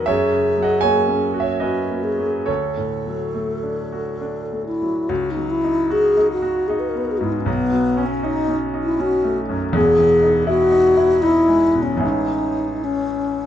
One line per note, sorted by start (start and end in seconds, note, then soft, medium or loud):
0.00 0.11 B2 soft
0.00 0.11 F#3 medium
0.00 0.11 B3 medium
0.00 0.11 D#4 medium
0.00 0.11 F#4 medium
0.00 0.10 D#5 medium
0.00 0.11 F#5 medium
0.00 0.11 G#5 medium
0.00 0.11 A#5 medium
0.00 0.11 B5 medium
0.06 2.43 F#2 medium
0.06 1.32 G#4 medium
0.06 0.60 C#5 medium
0.06 0.63 E5 loud
0.33 0.73 C#3 soft
0.58 0.99 F#3 medium
0.62 0.82 D#5 medium
0.62 0.83 F#5 medium
0.81 1.25 A#3 medium
0.81 1.37 C#5 medium
0.81 1.41 G#5 loud
1.08 1.51 C#4 soft
1.34 1.78 F#4 medium
1.40 1.61 C#5 medium
1.40 1.61 E5 medium
1.60 2.07 C#4 medium
1.60 2.05 F#4 medium
1.60 2.43 B4 medium
1.60 2.47 D#5 medium
1.89 2.36 A#3 soft
2.04 2.48 G#4 medium
2.18 2.48 F#3 soft
2.46 5.05 D2 medium
2.46 4.62 A4 medium
2.46 4.65 A4 medium
2.46 4.66 C#5 medium
2.77 3.24 A2 soft
3.06 3.52 F#3 soft
3.34 3.80 A3 soft
3.63 4.10 D4 soft
3.92 4.40 F#4 soft
4.21 4.70 D4 soft
4.52 4.99 A3 soft
4.66 5.11 E4 medium
4.82 5.10 F#3 soft
5.09 7.43 C#2 medium
5.09 5.32 F#4 medium
5.31 5.52 D#4 medium
5.36 5.80 F#3 medium
5.50 5.93 E4 medium
5.64 6.07 D#4 medium
5.90 6.33 F#4 medium
5.90 6.31 G#4 loud
6.17 6.60 D#4 medium
6.31 6.69 F#4 medium
6.42 6.85 F#4 medium
6.68 7.11 D#4 medium
6.68 6.81 G#4 medium
6.80 6.91 B4 medium
6.89 6.99 A#4 medium
6.95 7.36 B3 soft
6.95 7.06 B4 medium
7.05 7.13 A#4 medium
7.11 7.19 G#4 medium
7.18 7.46 G#2 medium
7.18 7.25 F#4 medium
7.24 7.34 E4 medium
7.32 7.41 D#4 medium
7.40 7.50 C#4 medium
7.46 9.70 B1 medium
7.46 8.07 B3 loud
7.72 8.13 F#3 medium
7.97 8.39 C#4 medium
8.06 8.26 C#4 medium
8.23 8.65 D#4 medium
8.23 8.57 D#4 loud
8.48 8.90 C#4 medium
8.74 9.15 D#4 medium
8.83 9.02 E4 medium
8.99 9.40 C#4 medium
8.99 9.38 F#4 loud
9.24 9.65 A3 medium
9.49 9.74 F#2 medium
9.73 11.97 E1 medium
9.73 11.98 E2 medium
9.73 10.44 G#4 loud
9.98 10.38 E3 medium
10.22 10.62 D#4 medium
10.47 10.86 E4 medium
10.47 11.24 F#4 loud
10.71 11.12 D#4 medium
10.97 11.38 E4 medium
11.22 11.65 D#4 medium
11.22 11.84 E4 loud
11.48 11.91 G#3 medium
11.75 12.02 B2 medium
11.82 12.02 C#4 medium
11.97 13.46 A1 medium
11.97 13.46 E3 medium
11.97 13.46 G#3 medium
11.97 13.46 C#4 medium
11.97 13.46 E4 medium
12.03 12.85 D#4 loud
12.84 13.46 C#4 medium